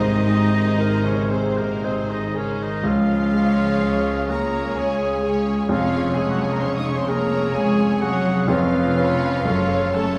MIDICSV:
0, 0, Header, 1, 12, 480
1, 0, Start_track
1, 0, Key_signature, -5, "major"
1, 0, Tempo, 1043478
1, 1320, Time_signature, 3, 2, 24, 8
1, 1320, Tempo, 952381
1, 2280, Tempo, 925926
1, 4200, Tempo, 980392
1, 5036, End_track
2, 0, Start_track
2, 0, Title_t, "Flute"
2, 0, Program_c, 0, 73
2, 0, Note_on_c, 0, 75, 75
2, 485, Note_off_c, 0, 75, 0
2, 488, Note_on_c, 0, 73, 55
2, 607, Note_on_c, 0, 72, 54
2, 613, Note_off_c, 0, 73, 0
2, 728, Note_off_c, 0, 72, 0
2, 730, Note_on_c, 0, 70, 55
2, 851, Note_on_c, 0, 72, 52
2, 857, Note_off_c, 0, 70, 0
2, 969, Note_on_c, 0, 75, 55
2, 976, Note_off_c, 0, 72, 0
2, 1086, Note_on_c, 0, 73, 51
2, 1093, Note_off_c, 0, 75, 0
2, 1204, Note_on_c, 0, 75, 53
2, 1211, Note_off_c, 0, 73, 0
2, 1318, Note_on_c, 0, 77, 71
2, 1326, Note_off_c, 0, 75, 0
2, 1911, Note_off_c, 0, 77, 0
2, 2038, Note_on_c, 0, 82, 63
2, 2274, Note_on_c, 0, 80, 61
2, 2281, Note_off_c, 0, 82, 0
2, 2621, Note_off_c, 0, 80, 0
2, 2767, Note_on_c, 0, 77, 74
2, 2990, Note_on_c, 0, 80, 61
2, 2998, Note_off_c, 0, 77, 0
2, 3068, Note_off_c, 0, 80, 0
2, 3071, Note_on_c, 0, 78, 59
2, 3138, Note_on_c, 0, 80, 51
2, 3146, Note_off_c, 0, 78, 0
2, 3188, Note_on_c, 0, 82, 50
2, 3196, Note_off_c, 0, 80, 0
2, 3228, Note_on_c, 0, 84, 52
2, 3236, Note_off_c, 0, 82, 0
2, 3269, Note_off_c, 0, 84, 0
2, 3272, Note_on_c, 0, 85, 51
2, 3317, Note_on_c, 0, 87, 56
2, 3325, Note_off_c, 0, 85, 0
2, 3366, Note_on_c, 0, 85, 56
2, 3373, Note_off_c, 0, 87, 0
2, 3420, Note_on_c, 0, 84, 55
2, 3428, Note_off_c, 0, 85, 0
2, 3477, Note_off_c, 0, 84, 0
2, 3480, Note_on_c, 0, 82, 75
2, 3715, Note_on_c, 0, 80, 65
2, 3723, Note_off_c, 0, 82, 0
2, 3957, Note_on_c, 0, 78, 69
2, 3965, Note_off_c, 0, 80, 0
2, 4192, Note_off_c, 0, 78, 0
2, 4196, Note_on_c, 0, 77, 75
2, 4915, Note_on_c, 0, 81, 70
2, 4923, Note_off_c, 0, 77, 0
2, 5036, Note_off_c, 0, 81, 0
2, 5036, End_track
3, 0, Start_track
3, 0, Title_t, "Violin section"
3, 0, Program_c, 1, 48
3, 0, Note_on_c, 1, 75, 77
3, 478, Note_off_c, 1, 75, 0
3, 489, Note_on_c, 1, 73, 59
3, 602, Note_on_c, 1, 72, 50
3, 609, Note_off_c, 1, 73, 0
3, 723, Note_on_c, 1, 70, 51
3, 726, Note_off_c, 1, 72, 0
3, 846, Note_off_c, 1, 70, 0
3, 847, Note_on_c, 1, 72, 58
3, 959, Note_on_c, 1, 75, 53
3, 968, Note_off_c, 1, 72, 0
3, 1076, Note_on_c, 1, 73, 49
3, 1084, Note_off_c, 1, 75, 0
3, 1198, Note_on_c, 1, 75, 57
3, 1200, Note_off_c, 1, 73, 0
3, 1312, Note_on_c, 1, 77, 81
3, 1313, Note_off_c, 1, 75, 0
3, 2037, Note_on_c, 1, 82, 61
3, 2039, Note_off_c, 1, 77, 0
3, 2272, Note_on_c, 1, 80, 59
3, 2273, Note_off_c, 1, 82, 0
3, 2761, Note_off_c, 1, 80, 0
3, 2761, Note_on_c, 1, 77, 70
3, 2977, Note_off_c, 1, 77, 0
3, 2978, Note_on_c, 1, 80, 61
3, 3052, Note_on_c, 1, 78, 59
3, 3064, Note_off_c, 1, 80, 0
3, 3123, Note_off_c, 1, 78, 0
3, 3123, Note_on_c, 1, 80, 56
3, 3178, Note_off_c, 1, 80, 0
3, 3180, Note_on_c, 1, 82, 58
3, 3224, Note_on_c, 1, 84, 54
3, 3225, Note_off_c, 1, 82, 0
3, 3264, Note_on_c, 1, 85, 53
3, 3267, Note_off_c, 1, 84, 0
3, 3308, Note_on_c, 1, 87, 57
3, 3310, Note_off_c, 1, 85, 0
3, 3355, Note_on_c, 1, 85, 60
3, 3360, Note_off_c, 1, 87, 0
3, 3408, Note_on_c, 1, 84, 56
3, 3416, Note_off_c, 1, 85, 0
3, 3468, Note_on_c, 1, 82, 69
3, 3474, Note_off_c, 1, 84, 0
3, 3708, Note_on_c, 1, 80, 67
3, 3713, Note_off_c, 1, 82, 0
3, 3947, Note_on_c, 1, 78, 72
3, 3953, Note_off_c, 1, 80, 0
3, 4193, Note_on_c, 1, 77, 78
3, 4194, Note_off_c, 1, 78, 0
3, 4901, Note_off_c, 1, 77, 0
3, 4918, Note_on_c, 1, 81, 65
3, 5036, Note_off_c, 1, 81, 0
3, 5036, End_track
4, 0, Start_track
4, 0, Title_t, "Violin section"
4, 0, Program_c, 2, 48
4, 0, Note_on_c, 2, 72, 58
4, 117, Note_off_c, 2, 72, 0
4, 123, Note_on_c, 2, 72, 54
4, 596, Note_off_c, 2, 72, 0
4, 601, Note_on_c, 2, 72, 45
4, 1076, Note_off_c, 2, 72, 0
4, 1085, Note_on_c, 2, 72, 39
4, 1313, Note_off_c, 2, 72, 0
4, 1557, Note_on_c, 2, 73, 51
4, 2029, Note_off_c, 2, 73, 0
4, 2035, Note_on_c, 2, 73, 51
4, 2508, Note_off_c, 2, 73, 0
4, 2523, Note_on_c, 2, 73, 47
4, 2759, Note_off_c, 2, 73, 0
4, 2765, Note_on_c, 2, 73, 53
4, 3000, Note_off_c, 2, 73, 0
4, 3006, Note_on_c, 2, 73, 51
4, 3467, Note_off_c, 2, 73, 0
4, 3473, Note_on_c, 2, 73, 56
4, 3946, Note_off_c, 2, 73, 0
4, 3963, Note_on_c, 2, 73, 54
4, 4198, Note_off_c, 2, 73, 0
4, 4438, Note_on_c, 2, 73, 58
4, 4674, Note_off_c, 2, 73, 0
4, 4681, Note_on_c, 2, 73, 57
4, 4913, Note_off_c, 2, 73, 0
4, 4918, Note_on_c, 2, 73, 52
4, 5036, Note_off_c, 2, 73, 0
4, 5036, End_track
5, 0, Start_track
5, 0, Title_t, "Clarinet"
5, 0, Program_c, 3, 71
5, 0, Note_on_c, 3, 68, 80
5, 302, Note_off_c, 3, 68, 0
5, 364, Note_on_c, 3, 70, 68
5, 609, Note_on_c, 3, 72, 56
5, 616, Note_off_c, 3, 70, 0
5, 849, Note_on_c, 3, 68, 54
5, 856, Note_off_c, 3, 72, 0
5, 1090, Note_on_c, 3, 70, 45
5, 1097, Note_off_c, 3, 68, 0
5, 1314, Note_off_c, 3, 70, 0
5, 1317, Note_on_c, 3, 68, 58
5, 2258, Note_off_c, 3, 68, 0
5, 2279, Note_on_c, 3, 68, 55
5, 2755, Note_off_c, 3, 68, 0
5, 2768, Note_on_c, 3, 68, 57
5, 3701, Note_off_c, 3, 68, 0
5, 3722, Note_on_c, 3, 68, 64
5, 3956, Note_off_c, 3, 68, 0
5, 3963, Note_on_c, 3, 68, 57
5, 4210, Note_on_c, 3, 71, 64
5, 4217, Note_off_c, 3, 68, 0
5, 4543, Note_off_c, 3, 71, 0
5, 4686, Note_on_c, 3, 69, 66
5, 5036, Note_off_c, 3, 69, 0
5, 5036, End_track
6, 0, Start_track
6, 0, Title_t, "Cor anglais"
6, 0, Program_c, 4, 69
6, 0, Note_on_c, 4, 63, 80
6, 483, Note_on_c, 4, 61, 60
6, 490, Note_off_c, 4, 63, 0
6, 606, Note_on_c, 4, 60, 50
6, 613, Note_off_c, 4, 61, 0
6, 724, Note_on_c, 4, 58, 52
6, 730, Note_off_c, 4, 60, 0
6, 850, Note_on_c, 4, 60, 47
6, 857, Note_off_c, 4, 58, 0
6, 968, Note_on_c, 4, 63, 48
6, 975, Note_off_c, 4, 60, 0
6, 1083, Note_off_c, 4, 63, 0
6, 1086, Note_on_c, 4, 61, 50
6, 1206, Note_on_c, 4, 63, 56
6, 1213, Note_off_c, 4, 61, 0
6, 1317, Note_on_c, 4, 65, 72
6, 1324, Note_off_c, 4, 63, 0
6, 2043, Note_on_c, 4, 70, 63
6, 2050, Note_off_c, 4, 65, 0
6, 2286, Note_on_c, 4, 68, 52
6, 2294, Note_off_c, 4, 70, 0
6, 2627, Note_off_c, 4, 68, 0
6, 2764, Note_on_c, 4, 65, 70
6, 2986, Note_on_c, 4, 68, 67
6, 2993, Note_off_c, 4, 65, 0
6, 3068, Note_off_c, 4, 68, 0
6, 3070, Note_on_c, 4, 66, 58
6, 3134, Note_on_c, 4, 68, 51
6, 3141, Note_off_c, 4, 66, 0
6, 3186, Note_on_c, 4, 70, 53
6, 3193, Note_off_c, 4, 68, 0
6, 3232, Note_on_c, 4, 72, 54
6, 3240, Note_off_c, 4, 70, 0
6, 3261, Note_off_c, 4, 72, 0
6, 3264, Note_on_c, 4, 73, 46
6, 3311, Note_on_c, 4, 75, 52
6, 3319, Note_off_c, 4, 73, 0
6, 3370, Note_on_c, 4, 73, 51
6, 3377, Note_off_c, 4, 75, 0
6, 3426, Note_on_c, 4, 72, 53
6, 3434, Note_off_c, 4, 73, 0
6, 3479, Note_on_c, 4, 70, 61
6, 3486, Note_off_c, 4, 72, 0
6, 3722, Note_on_c, 4, 68, 58
6, 3729, Note_off_c, 4, 70, 0
6, 3959, Note_on_c, 4, 66, 69
6, 3967, Note_off_c, 4, 68, 0
6, 4194, Note_off_c, 4, 66, 0
6, 4197, Note_on_c, 4, 65, 77
6, 4919, Note_on_c, 4, 69, 61
6, 4927, Note_off_c, 4, 65, 0
6, 5036, Note_off_c, 4, 69, 0
6, 5036, End_track
7, 0, Start_track
7, 0, Title_t, "Viola section"
7, 0, Program_c, 5, 48
7, 0, Note_on_c, 5, 63, 49
7, 0, Note_on_c, 5, 68, 50
7, 119, Note_off_c, 5, 63, 0
7, 119, Note_off_c, 5, 68, 0
7, 125, Note_on_c, 5, 63, 49
7, 126, Note_on_c, 5, 68, 48
7, 599, Note_off_c, 5, 63, 0
7, 599, Note_off_c, 5, 68, 0
7, 610, Note_on_c, 5, 68, 42
7, 613, Note_on_c, 5, 63, 44
7, 1081, Note_off_c, 5, 63, 0
7, 1081, Note_off_c, 5, 68, 0
7, 1085, Note_on_c, 5, 68, 44
7, 1086, Note_on_c, 5, 63, 41
7, 1313, Note_off_c, 5, 68, 0
7, 1314, Note_off_c, 5, 63, 0
7, 1557, Note_on_c, 5, 61, 45
7, 1560, Note_on_c, 5, 68, 47
7, 2031, Note_off_c, 5, 61, 0
7, 2033, Note_off_c, 5, 68, 0
7, 2045, Note_on_c, 5, 68, 48
7, 2050, Note_on_c, 5, 61, 50
7, 2513, Note_off_c, 5, 68, 0
7, 2516, Note_off_c, 5, 61, 0
7, 2524, Note_on_c, 5, 61, 45
7, 2527, Note_on_c, 5, 68, 47
7, 2761, Note_off_c, 5, 61, 0
7, 2763, Note_off_c, 5, 68, 0
7, 2768, Note_on_c, 5, 68, 49
7, 2770, Note_on_c, 5, 61, 50
7, 3004, Note_off_c, 5, 68, 0
7, 3005, Note_off_c, 5, 61, 0
7, 3012, Note_on_c, 5, 61, 48
7, 3015, Note_on_c, 5, 68, 52
7, 3473, Note_off_c, 5, 61, 0
7, 3474, Note_off_c, 5, 68, 0
7, 3486, Note_on_c, 5, 68, 55
7, 3490, Note_on_c, 5, 61, 52
7, 3951, Note_off_c, 5, 61, 0
7, 3952, Note_off_c, 5, 68, 0
7, 3957, Note_on_c, 5, 61, 53
7, 3958, Note_on_c, 5, 68, 53
7, 4195, Note_off_c, 5, 61, 0
7, 4195, Note_off_c, 5, 68, 0
7, 4434, Note_on_c, 5, 61, 53
7, 4434, Note_on_c, 5, 71, 53
7, 4662, Note_off_c, 5, 61, 0
7, 4668, Note_on_c, 5, 61, 57
7, 4671, Note_off_c, 5, 71, 0
7, 4672, Note_on_c, 5, 69, 55
7, 4909, Note_off_c, 5, 61, 0
7, 4910, Note_off_c, 5, 69, 0
7, 4915, Note_on_c, 5, 61, 47
7, 4916, Note_on_c, 5, 69, 52
7, 5036, Note_off_c, 5, 61, 0
7, 5036, Note_off_c, 5, 69, 0
7, 5036, End_track
8, 0, Start_track
8, 0, Title_t, "French horn section"
8, 0, Program_c, 6, 60
8, 0, Note_on_c, 6, 60, 57
8, 0, Note_on_c, 6, 68, 54
8, 1149, Note_off_c, 6, 68, 0
8, 1167, Note_off_c, 6, 60, 0
8, 1314, Note_on_c, 6, 68, 55
8, 1319, Note_on_c, 6, 61, 53
8, 2257, Note_off_c, 6, 68, 0
8, 2260, Note_off_c, 6, 61, 0
8, 2285, Note_on_c, 6, 68, 56
8, 2286, Note_on_c, 6, 61, 59
8, 2758, Note_off_c, 6, 61, 0
8, 2758, Note_off_c, 6, 68, 0
8, 2770, Note_on_c, 6, 68, 55
8, 2772, Note_on_c, 6, 61, 56
8, 3702, Note_off_c, 6, 68, 0
8, 3703, Note_off_c, 6, 61, 0
8, 3716, Note_on_c, 6, 61, 62
8, 3718, Note_on_c, 6, 68, 63
8, 4189, Note_off_c, 6, 61, 0
8, 4190, Note_off_c, 6, 68, 0
8, 4198, Note_on_c, 6, 61, 55
8, 4200, Note_on_c, 6, 71, 64
8, 4667, Note_off_c, 6, 61, 0
8, 4667, Note_off_c, 6, 71, 0
8, 4672, Note_on_c, 6, 61, 65
8, 4673, Note_on_c, 6, 69, 62
8, 5036, Note_off_c, 6, 61, 0
8, 5036, Note_off_c, 6, 69, 0
8, 5036, End_track
9, 0, Start_track
9, 0, Title_t, "Grand piano"
9, 0, Program_c, 7, 0
9, 0, Control_c, 7, 64, 127
9, 0, Note_on_c, 7, 44, 69
9, 125, Note_on_c, 7, 56, 50
9, 361, Note_on_c, 7, 63, 47
9, 511, Note_off_c, 7, 56, 0
9, 603, Note_on_c, 7, 68, 50
9, 750, Note_off_c, 7, 63, 0
9, 845, Note_on_c, 7, 75, 49
9, 991, Note_off_c, 7, 68, 0
9, 1077, Note_on_c, 7, 68, 47
9, 1228, Note_off_c, 7, 75, 0
9, 1302, Note_off_c, 7, 44, 0
9, 1303, Note_on_c, 7, 37, 69
9, 1314, Note_off_c, 7, 68, 0
9, 1330, Control_c, 7, 64, 0
9, 1425, Control_c, 7, 64, 127
9, 1546, Note_on_c, 7, 56, 50
9, 1788, Note_on_c, 7, 61, 44
9, 1939, Note_off_c, 7, 56, 0
9, 2039, Note_on_c, 7, 68, 49
9, 2179, Note_off_c, 7, 61, 0
9, 2278, Note_on_c, 7, 73, 51
9, 2423, Note_off_c, 7, 68, 0
9, 2515, Note_on_c, 7, 68, 51
9, 2666, Note_off_c, 7, 73, 0
9, 2735, Note_off_c, 7, 37, 0
9, 2755, Note_on_c, 7, 41, 69
9, 2762, Note_off_c, 7, 68, 0
9, 2774, Control_c, 7, 64, 0
9, 2851, Control_c, 7, 64, 127
9, 3000, Note_on_c, 7, 56, 51
9, 3243, Note_on_c, 7, 61, 52
9, 3382, Note_off_c, 7, 56, 0
9, 3478, Note_on_c, 7, 68, 61
9, 3622, Note_off_c, 7, 61, 0
9, 3718, Note_on_c, 7, 73, 57
9, 3862, Note_off_c, 7, 68, 0
9, 3958, Note_on_c, 7, 68, 62
9, 4103, Note_off_c, 7, 73, 0
9, 4175, Note_off_c, 7, 41, 0
9, 4200, Note_off_c, 7, 68, 0
9, 4201, Note_on_c, 7, 41, 76
9, 4208, Control_c, 7, 64, 0
9, 4301, Control_c, 7, 64, 127
9, 4440, Note_on_c, 7, 61, 53
9, 4440, Note_on_c, 7, 71, 54
9, 4659, Note_off_c, 7, 71, 0
9, 4660, Note_off_c, 7, 61, 0
9, 4663, Note_off_c, 7, 41, 0
9, 4677, Note_on_c, 7, 42, 64
9, 4687, Control_c, 7, 64, 0
9, 4782, Control_c, 7, 64, 127
9, 4925, Note_on_c, 7, 61, 49
9, 4926, Note_on_c, 7, 69, 52
9, 5036, Note_off_c, 7, 42, 0
9, 5036, Note_off_c, 7, 61, 0
9, 5036, Note_off_c, 7, 69, 0
9, 5036, End_track
10, 0, Start_track
10, 0, Title_t, "Cello section"
10, 0, Program_c, 8, 48
10, 0, Note_on_c, 8, 51, 84
10, 487, Note_off_c, 8, 51, 0
10, 489, Note_on_c, 8, 49, 68
10, 609, Note_off_c, 8, 49, 0
10, 610, Note_on_c, 8, 48, 62
10, 730, Note_off_c, 8, 48, 0
10, 735, Note_on_c, 8, 46, 59
10, 852, Note_off_c, 8, 46, 0
10, 853, Note_on_c, 8, 48, 61
10, 971, Note_off_c, 8, 48, 0
10, 971, Note_on_c, 8, 51, 59
10, 1090, Note_off_c, 8, 51, 0
10, 1093, Note_on_c, 8, 49, 62
10, 1209, Note_off_c, 8, 49, 0
10, 1211, Note_on_c, 8, 51, 62
10, 1320, Note_off_c, 8, 51, 0
10, 1325, Note_on_c, 8, 53, 78
10, 2045, Note_off_c, 8, 53, 0
10, 2046, Note_on_c, 8, 58, 77
10, 2282, Note_off_c, 8, 58, 0
10, 2286, Note_on_c, 8, 56, 71
10, 2768, Note_off_c, 8, 56, 0
10, 2768, Note_on_c, 8, 53, 73
10, 2980, Note_off_c, 8, 53, 0
10, 2996, Note_on_c, 8, 56, 67
10, 3073, Note_off_c, 8, 56, 0
10, 3078, Note_on_c, 8, 54, 70
10, 3135, Note_off_c, 8, 54, 0
10, 3139, Note_on_c, 8, 56, 58
10, 3186, Note_off_c, 8, 56, 0
10, 3188, Note_on_c, 8, 58, 61
10, 3229, Note_off_c, 8, 58, 0
10, 3230, Note_on_c, 8, 60, 59
10, 3270, Note_off_c, 8, 60, 0
10, 3273, Note_on_c, 8, 61, 57
10, 3315, Note_off_c, 8, 61, 0
10, 3320, Note_on_c, 8, 63, 64
10, 3367, Note_off_c, 8, 63, 0
10, 3372, Note_on_c, 8, 61, 64
10, 3424, Note_off_c, 8, 61, 0
10, 3428, Note_on_c, 8, 60, 63
10, 3484, Note_off_c, 8, 60, 0
10, 3487, Note_on_c, 8, 58, 90
10, 3722, Note_off_c, 8, 58, 0
10, 3727, Note_on_c, 8, 56, 76
10, 3963, Note_off_c, 8, 56, 0
10, 3966, Note_on_c, 8, 54, 88
10, 4199, Note_off_c, 8, 54, 0
10, 4209, Note_on_c, 8, 53, 77
10, 4923, Note_off_c, 8, 53, 0
10, 4925, Note_on_c, 8, 57, 80
10, 5036, Note_off_c, 8, 57, 0
10, 5036, End_track
11, 0, Start_track
11, 0, Title_t, "Bassoon"
11, 0, Program_c, 10, 70
11, 0, Note_on_c, 10, 48, 57
11, 1150, Note_off_c, 10, 48, 0
11, 1325, Note_on_c, 10, 49, 58
11, 2263, Note_off_c, 10, 49, 0
11, 2275, Note_on_c, 10, 49, 55
11, 2753, Note_off_c, 10, 49, 0
11, 2756, Note_on_c, 10, 49, 64
11, 3695, Note_off_c, 10, 49, 0
11, 3718, Note_on_c, 10, 49, 64
11, 4191, Note_off_c, 10, 49, 0
11, 4204, Note_on_c, 10, 49, 68
11, 4533, Note_off_c, 10, 49, 0
11, 4682, Note_on_c, 10, 49, 63
11, 5036, Note_off_c, 10, 49, 0
11, 5036, End_track
12, 0, Start_track
12, 0, Title_t, "Double bass section"
12, 0, Program_c, 11, 48
12, 0, Note_on_c, 11, 32, 70
12, 310, Note_off_c, 11, 32, 0
12, 368, Note_on_c, 11, 32, 61
12, 793, Note_off_c, 11, 32, 0
12, 847, Note_on_c, 11, 32, 53
12, 1266, Note_off_c, 11, 32, 0
12, 1314, Note_on_c, 11, 37, 65
12, 1741, Note_off_c, 11, 37, 0
12, 1803, Note_on_c, 11, 37, 57
12, 2225, Note_off_c, 11, 37, 0
12, 2275, Note_on_c, 11, 37, 57
12, 2705, Note_off_c, 11, 37, 0
12, 2763, Note_on_c, 11, 29, 66
12, 3188, Note_off_c, 11, 29, 0
12, 3249, Note_on_c, 11, 29, 64
12, 3665, Note_off_c, 11, 29, 0
12, 3719, Note_on_c, 11, 29, 63
12, 4143, Note_off_c, 11, 29, 0
12, 4200, Note_on_c, 11, 29, 78
12, 4620, Note_off_c, 11, 29, 0
12, 4675, Note_on_c, 11, 30, 70
12, 5036, Note_off_c, 11, 30, 0
12, 5036, End_track
0, 0, End_of_file